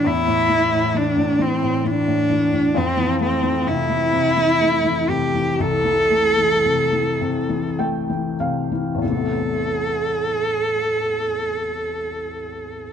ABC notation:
X:1
M:6/8
L:1/16
Q:3/8=40
K:Am
V:1 name="Cello"
E4 D2 C2 D4 | C2 C2 E6 G2 | A8 z4 | A12 |]
V:2 name="Felt piano"
z12 | z12 | z8 g2 f2 | z12 |]
V:3 name="Felt piano" clef=bass
[E,,A,,E,] A,, E, A,, E, A,, E, A,, E, A,, E, A,, | F,, E, A, E, C, E, C, E, A, E, C, E, | C,, E, A, E, C, E, C, E, A, E, C, E, | [A,,,E,,C,E,A,B,]12 |]